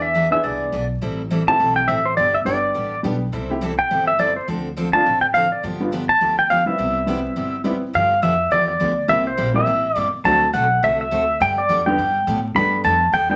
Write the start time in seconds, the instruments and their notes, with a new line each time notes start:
Already playing: upright bass E2, upright piano B3 D4 E4 G#4
0.02 pedal steel guitar E5
0.14 steel-string acoustic guitar E3 B3 D4 G#4
0.30 upright piano B3 D4 E4 G#4, pedal steel guitar E5
0.43 upright bass C2, steel-string acoustic guitar E3 B3 D4 G#4, pedal steel guitar D5
0.72 upright bass B1, steel-string acoustic guitar E3 B3 D4 G#4
1.01 upright bass A1, steel-string acoustic guitar E3 G3 C4 E4 A4
1.30 steel-string acoustic guitar E3 G3 C4 E4 A4
1.47 upright piano A3 C4 E4 G4, pedal steel guitar A5
1.59 upright bass B1, steel-string acoustic guitar E3 G3 C4 E4 A4
1.76 pedal steel guitar G5
1.88 upright bass A1, steel-string acoustic guitar E3 G3 C4 E4 A4, pedal steel guitar E5
2.06 pedal steel guitar C5
2.17 upright bass G1, steel-string acoustic guitar D3 G3 B3 D4 G4, pedal steel guitar D5
2.35 pedal steel guitar E5
2.45 upright bass G1, steel-string acoustic guitar D3 G3 B3 D4 G4, upright piano G3 B3 D4 G4, pedal steel guitar D5
2.74 upright bass A1, steel-string acoustic guitar D3 G3 B3 D4 G4
3.03 upright bass B1, steel-string acoustic guitar D3 G3 B3 D4 G4, upright piano G3 B3 D4 G4
3.32 upright bass C2, steel-string acoustic guitar C3 E3 G3 C4 E4 A4
3.50 upright piano A3 C4 E4 G4
3.61 steel-string acoustic guitar C3 E3 G3 C4 E4 A4
3.79 pedal steel guitar G5
3.90 upright bass G1, steel-string acoustic guitar C3 E3 G3 C4 E4 A4
4.08 pedal steel guitar E5
4.19 steel-string acoustic guitar C3 E3 G3 C4 E4 A4, pedal steel guitar D5
4.36 pedal steel guitar C5
4.48 upright bass D2, steel-string acoustic guitar D3 F3 C4 D4 A4
4.77 steel-string acoustic guitar D3 F3 C4 D4 A4
4.93 upright piano A3 C4 D4 F4, pedal steel guitar A5
5.05 upright bass A1, steel-string acoustic guitar D3 F3 C4 D4 A4
5.21 pedal steel guitar G5
5.34 steel-string acoustic guitar D3 F3 C4 D4 A4, pedal steel guitar F5
5.52 pedal steel guitar D5
5.63 upright bass G1, steel-string acoustic guitar D3 F3 B3 D4 G4
5.80 upright piano G3 B3 D4 F4
5.92 steel-string acoustic guitar D3 F3 B3 D4 G4
6.09 pedal steel guitar A5
6.21 upright bass D2, steel-string acoustic guitar D3 F3 B3 D4 G4
6.39 pedal steel guitar G5
6.50 steel-string acoustic guitar D3 F3 B3 D4 G4, pedal steel guitar F5
6.66 upright piano G3 B3 C4 E4, pedal steel guitar E5
6.78 upright bass C2, steel-string acoustic guitar C3 G3 B3 E4 G4
7.06 steel-string acoustic guitar C3 G3 B3 E4 G4, upright piano G3 B3 C4 E4
7.36 upright bass G1, steel-string acoustic guitar C3 G3 B3 E4 G4
7.64 steel-string acoustic guitar C3 G3 B3 E4 G4, upright piano G3 B3 C4 E4
7.93 upright bass G2, steel-string acoustic guitar D3 F3 B3 D4 G4, pedal steel guitar F5
8.22 upright bass F2, steel-string acoustic guitar D3 F3 B3 D4 G4, pedal steel guitar E5
8.51 upright bass E2, steel-string acoustic guitar D3 F3 B3 D4 G4, pedal steel guitar D5
8.68 pedal steel guitar D5
8.79 upright bass D2, steel-string acoustic guitar D3 F3 B3 D4 G4
9.08 upright bass C2, steel-string acoustic guitar C3 G3 A#3 E4 G4, upright piano G3 A#3 C4 E4 G4, pedal steel guitar E5
9.27 pedal steel guitar C5
9.37 upright bass A#1, steel-string acoustic guitar C3 G3 A#3 E4 G4
9.54 upright piano G3 A#3 C4 E4 G4, pedal steel guitar E5
9.66 upright bass A1, steel-string acoustic guitar C3 G3 A#3 E4 G4
9.95 upright bass G1, steel-string acoustic guitar C3 G3 A#3 E4 G4, pedal steel guitar D5
10.13 muted upright bass stroke
10.24 upright bass D2, steel-string acoustic guitar D3 A3 C4 F#4 A4, upright piano F#3 A3 C4 D4 F#4, pedal steel guitar A5
10.53 upright bass B1, steel-string acoustic guitar D3 A3 C4 F#4 A4, pedal steel guitar F#5
10.83 upright bass C2, steel-string acoustic guitar D3 A3 C4 F#4 A4, pedal steel guitar E5
11.01 pedal steel guitar E5
11.11 upright bass D2, steel-string acoustic guitar D3 A3 C4 F#4 A4
11.40 upright bass G2, steel-string acoustic guitar D3 G3 B3 D4 G4, pedal steel guitar G5
11.58 pedal steel guitar D5
11.69 upright bass F2, steel-string acoustic guitar D3 G3 B3 D4 G4
11.86 upright piano D3 G3 B3 D4 G4, pedal steel guitar G5
11.98 upright bass G2, steel-string acoustic guitar D3 G3 B3 D4 G4
12.27 upright bass A2, steel-string acoustic guitar D3 G3 B3 D4 G4
12.55 upright bass G2, upright piano G3 A3 B3 D4 G4, steel-string acoustic guitar G3 B3 D4 A4, pedal steel guitar B5
12.84 upright bass F2, steel-string acoustic guitar G3 B3 D4 A4, pedal steel guitar A5
13.13 upright bass E2, steel-string acoustic guitar G3 B3 D4 A4, pedal steel guitar G5
13.30 upright piano G3 A3 B3 D4 A4, pedal steel guitar G5